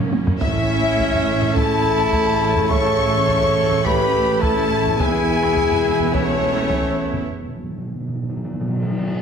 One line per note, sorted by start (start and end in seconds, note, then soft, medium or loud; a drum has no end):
0.00 0.42 F#1 medium
0.00 0.42 F#2 medium
0.00 0.38 A#3 medium
0.00 0.39 C#4 medium
0.13 taiko high medium
0.27 taiko low loud
0.39 4.95 A1 loud
0.39 4.95 A2 loud
0.39 4.94 C#3 loud
0.39 4.95 A3 medium
0.39 4.95 A3 loud
0.39 4.94 C#4 medium
0.39 1.52 C#4 loud
0.39 1.52 E4 loud
0.39 1.51 E5 loud
0.39 1.52 E5 loud
0.39 taiko loud
0.99 taiko medium
1.13 taiko low medium
1.42 taiko low medium
1.54 2.70 E4 loud
1.54 2.67 A4 loud
1.54 2.70 A5 loud
1.54 2.71 A5 loud
1.54 taiko medium
2.12 taiko medium
2.56 taiko low medium
2.69 3.83 A4 loud
2.69 3.83 C#5 loud
2.69 3.84 C#6 loud
2.69 3.85 C#6 loud
2.69 taiko loud
3.28 taiko medium
3.42 taiko low medium
3.70 taiko low medium
3.84 4.42 G4 loud
3.84 4.42 B4 loud
3.84 4.42 B5 loud
3.84 4.43 B5 loud
3.84 taiko loud
4.42 4.98 E4 loud
4.42 4.98 A4 loud
4.42 5.01 A5 loud
4.42 4.98 A5 loud
4.42 taiko medium
4.86 taiko low medium
4.98 7.28 E1 loud
4.98 7.28 E2 medium
4.98 7.23 B2 medium
4.98 7.24 B3 medium
4.98 7.28 B3 medium
4.98 7.24 E4 medium
4.98 6.11 E4 loud
4.98 6.13 G#4 loud
4.98 6.13 G#5 loud
4.98 6.15 G#5 loud
4.98 6.14 G#5 loud
4.98 taiko loud
5.43 taiko rim soft
5.56 taiko medium
5.71 taiko low medium
5.99 taiko low medium
6.13 7.25 A3 loud
6.13 7.25 C#4 loud
6.13 7.28 C#5 loud
6.13 7.00 C#5 loud
6.13 7.29 C#5 loud
6.13 taiko loud
6.57 taiko rim soft
6.70 taiko medium
7.13 taiko low medium
7.28 7.33 B2 soft
7.34 7.40 B2 soft
7.42 7.47 B2 soft
7.48 7.55 B2 soft
7.56 7.62 B2 medium
7.63 7.69 B2 soft
7.70 7.76 B2 medium
7.78 7.84 B2 medium
7.85 7.92 B2 soft
7.94 7.99 B2 medium
8.00 8.06 B2 medium
8.08 8.14 B2 medium
8.15 8.21 B2 medium
8.22 8.28 B2 medium
8.29 8.35 B2 medium
8.36 8.43 B2 medium
8.44 8.52 B2 medium
8.53 8.59 B2 medium
8.60 8.67 B2 medium
8.68 8.74 B2 medium
8.75 8.82 B2 medium
8.83 8.89 B2 loud
8.90 8.98 B2 loud
8.99 9.06 B2 loud
9.07 9.12 B2 loud
9.14 9.19 B2 medium